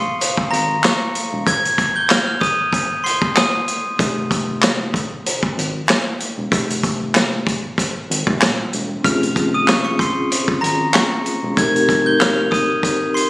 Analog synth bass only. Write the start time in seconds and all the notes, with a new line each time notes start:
0.38 G#1
0.52 G#1
1.33 E1
3.99 F1
5.43 G#1
5.57 G#1
6.38 E1
6.52 F1
8.10 G#1
8.27 F1
8.42 D#1
8.73 E1
9.05 F1
10.48 G#1
10.62 G#1
11.43 E1
11.57 F1